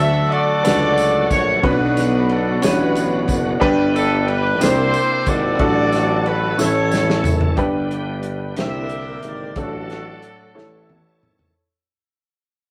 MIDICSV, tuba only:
0, 0, Header, 1, 2, 480
1, 0, Start_track
1, 0, Key_signature, 2, "major"
1, 0, Tempo, 662252
1, 1184, Time_signature, 6, 3, 24, 8
1, 9209, End_track
2, 0, Start_track
2, 0, Title_t, "Tuba"
2, 0, Program_c, 0, 58
2, 0, Note_on_c, 0, 38, 110
2, 249, Note_off_c, 0, 38, 0
2, 470, Note_on_c, 0, 37, 92
2, 917, Note_off_c, 0, 37, 0
2, 951, Note_on_c, 0, 34, 99
2, 1168, Note_off_c, 0, 34, 0
2, 1186, Note_on_c, 0, 35, 113
2, 1873, Note_off_c, 0, 35, 0
2, 1904, Note_on_c, 0, 33, 91
2, 2351, Note_off_c, 0, 33, 0
2, 2385, Note_on_c, 0, 30, 98
2, 2602, Note_off_c, 0, 30, 0
2, 2624, Note_on_c, 0, 31, 115
2, 3337, Note_on_c, 0, 36, 100
2, 3348, Note_off_c, 0, 31, 0
2, 3598, Note_off_c, 0, 36, 0
2, 3820, Note_on_c, 0, 32, 94
2, 4038, Note_off_c, 0, 32, 0
2, 4057, Note_on_c, 0, 33, 115
2, 4745, Note_off_c, 0, 33, 0
2, 4776, Note_on_c, 0, 33, 91
2, 5225, Note_off_c, 0, 33, 0
2, 5254, Note_on_c, 0, 30, 90
2, 5474, Note_off_c, 0, 30, 0
2, 5494, Note_on_c, 0, 31, 85
2, 6184, Note_off_c, 0, 31, 0
2, 6213, Note_on_c, 0, 36, 80
2, 6664, Note_off_c, 0, 36, 0
2, 6690, Note_on_c, 0, 32, 82
2, 6913, Note_off_c, 0, 32, 0
2, 6933, Note_on_c, 0, 33, 95
2, 7434, Note_off_c, 0, 33, 0
2, 7656, Note_on_c, 0, 33, 84
2, 8109, Note_off_c, 0, 33, 0
2, 8143, Note_on_c, 0, 32, 71
2, 8363, Note_off_c, 0, 32, 0
2, 9209, End_track
0, 0, End_of_file